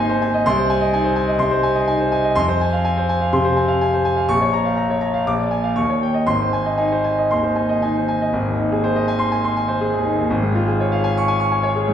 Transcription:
grand piano
Already playing: G#1 D#2 D#4 C5 D#5 G#5 C6
0.09 C5
0.22 G#5
0.34 D#5
0.46 C2 C6
0.57 C5
0.70 G#5
0.81 D#5
0.93 D#4 G#5
1.04 C5
1.16 G#5
1.28 D#5
1.39 C2 C6
1.51 C5
1.63 G#5
1.75 D#5
1.87 D#4 G#5
2.00 C5
2.12 G#5
2.24 D#5
2.35 F2 C6
2.48 C5
2.61 G#5
2.73 F5
2.85 G#5
2.97 C5
3.09 G#5
3.21 F5
3.33 C3 C6
3.45 C5
3.56 G#5
3.68 F5
3.81 G#5
3.94 C5
4.05 G#5
4.16 F5
4.28 A#1 C#6
4.42 C#5
4.53 A#5
4.65 F5
4.77 A#5
4.90 C#5
5.01 A#5
5.14 F5
5.27 A#1 D6
5.39 D5
5.51 G#5
5.64 F5
5.76 D#2 C#6
5.89 C#5
6.03 G5
6.14 D#5
6.27 G#1 C6
6.41 C5
6.53 G#5
6.66 D#5
6.77 D#4 G#5
6.92 C5
7.04 G#5
7.18 D#5
7.31 D#2 C6
7.43 C5
7.56 G#5
7.69 D#5
7.82 D#4 G#5
7.97 C5
8.08 G#5
8.22 D#5
8.33 G#1
8.47 D#2
8.59 D#4
8.72 G#4
8.84 C5
8.96 D#5
9.08 G#5
9.19 C6
9.32 G#5
9.44 C6
9.57 G#5
9.68 C5
9.81 G#4
9.94 D#2
10.05 D#4
10.19 D#2
10.30 G#1
10.42 G#2
10.55 F4
10.67 G#4
10.80 C#5
10.92 F5
11.04 G#5
11.18 C#6
11.28 G#5
11.40 C#6
11.51 G#5
11.63 C#5
11.75 G#4
11.88 G#2

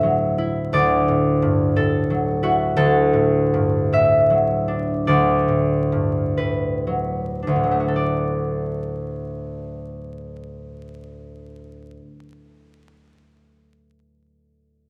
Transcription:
harp
Already playing: D2 A2 A3 F#4 A4 E5
0.03 F#3
0.38 E4
0.73 D2 D5
1.08 A2
1.42 G2
1.76 A2 A4
2.10 F#3
2.43 E4 F#4
2.76 D2 A4
3.13 A2
3.54 G2
3.92 A2 E5
4.30 F#3
4.68 D4
5.07 D2 D5
5.48 A2
5.92 G2
6.37 A2 B4
6.87 F#3
7.43 D4
7.47 D2
7.56 A2
7.64 F#3
7.71 A3
7.80 F#4
7.88 A4
7.96 D5

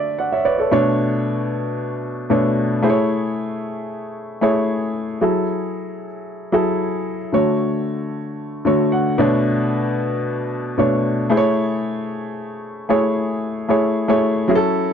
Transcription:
grand piano
Already playing: D3 A3 F#4 C#5 D5 E5
0.19 D5 F#5
0.32 C#5 E5
0.45 B4 C#5 D5
0.58 A4 C#5
0.71 B2 A3 D4 C#5
2.30 B2 A3 D4 C#5
2.82 A3 E4 G#4 C5
2.90 C#5
4.41 A3 E4 G#4 C#5
5.21 F#3 E4 G#4 A4
6.52 F#3 E4 G#4 A4
7.32 D3 A3 F#4 C#5
8.65 D3 A3 F#4 C#5
8.92 F#5
9.18 B2 A3 D4 C#5
10.78 B2 A3 D4 C#5
11.30 A3 E4 G#4 C5
11.37 C#5
12.89 A3 E4 G#4 C#5
13.68 A3 E4 G#4 C#5
14.08 A3 E4 G#4 C#5
14.48 F#3 C#4 E4 G#4
14.55 A4

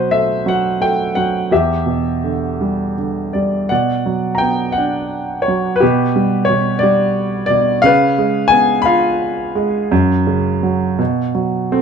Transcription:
grand piano
Already playing: B2 F#3 B4 C5 D#5
0.11 A3 E5
0.46 F#3 F#5
0.80 A3 G5
1.15 F#3 F#5
1.51 E2 G4 E5
1.86 B2
2.24 D3
2.61 G3
2.98 D3
3.33 G3 D5
3.69 B2 D5 F#5
4.06 F#3
4.35 G5 A#5
4.42 B3
4.72 F#5
4.78 D4
5.42 C#5
5.48 F#3
5.76 B4
5.80 B2 G4
6.16 G3
6.45 C#5
6.50 B2
6.79 D5
6.83 G3
7.46 B2 D5
7.82 C#3 B4 F5
8.18 G#3
8.48 B3 G#5
8.82 F5 B5
8.86 F4
9.55 G#3
9.92 F#2
10.27 C#3
10.63 F#3
10.99 B2
11.35 F#3
11.72 A3 C4

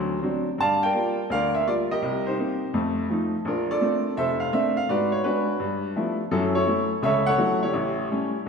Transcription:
upright piano
Already playing: D2 F#3 C5
0.23 F#3 C4 D4
0.58 G2 D5 F5 A5
0.83 A#4 D5 G5
0.93 G3 A#3 F4
1.30 D2 A#4 D5 F5
1.54 E5
1.67 G3 A#3 F4 D5
1.91 G4 A#4 D#5
2.02 C2
2.26 D#4 G4 C5
2.38 A#3 C4 D#4
2.74 F2 A3
3.10 F3 A3 D#4
3.45 A#1 D4 F4 A#4
3.71 F4 A4 D5
3.81 A3 A#3 C4 D4
4.17 F1 A4 C5 E5
4.40 F5
4.52 A3 A#3 C4 D4 E5
4.77 F5
4.89 G#2 F#4 B4 D5
5.12 C#5
5.24 G#3 B3 D4 F#4 B4
5.60 G2
5.96 F3 G3 A3 B3 E4
6.31 F#2 F#3 C#4 E4 A4
6.55 E4 A4 C#5
6.67 F#3 A3 E4
7.02 C#2 C#3 A4 C#5 E5
7.26 A4 C#5 F#5
7.38 F#3 A3 E4
7.63 E4 G4 C#5
7.73 A1
8.11 G3 A3 C#4

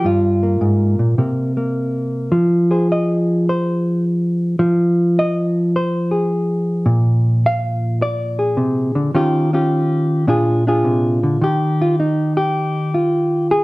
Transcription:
hollow-body jazz guitar
0.04 G2 F4
0.43 A#3
0.61 G#2
0.99 A#2
1.18 C3 A#3
1.57 A#3
2.32 F3
2.71 G#4 C5
2.92 D#5
3.49 C5
4.59 F3
5.19 D#5
5.76 C5
6.11 G#4
6.86 A#2
7.46 F5
8.02 D5
8.39 G#4
8.57 C3
8.95 D3
9.15 D#3 C#4 F4 G4
9.53 C#4 F4 G4
10.27 A#2 D4 F4 G#4
10.67 D4 F4 G#4
10.84 C3
11.23 D3
11.41 D#3 G4
11.82 F4
12.00 D#4
12.37 G4
12.94 F4
13.51 G#4

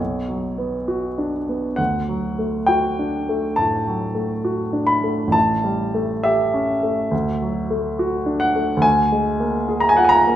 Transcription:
grand piano
Already playing: B1 C#5
0.29 F#3
0.58 B3
0.88 F#4
1.18 D4
1.49 B3
1.76 D2 F#5
2.09 F#3
2.39 A3
2.67 F#4 G5
2.99 D4
3.29 A3
3.56 A2 A5
3.87 F#3
4.15 A3
4.45 F#4
4.73 D4
4.87 B5
5.04 A3
5.27 A1
5.32 A5
5.64 G3
5.95 A3
6.23 G4 E5
6.54 C#4
6.83 A3
7.11 D2
7.42 F#3
7.70 A3
7.99 F#4
8.26 D4
8.40 F#5
8.56 A3
8.77 D2
8.82 G#5
9.12 G#3
9.40 A#3
9.69 G#4
9.80 A#5
9.89 G#5
9.97 F4 F#5
10.05 G#5
10.09 A#5
10.26 A#3

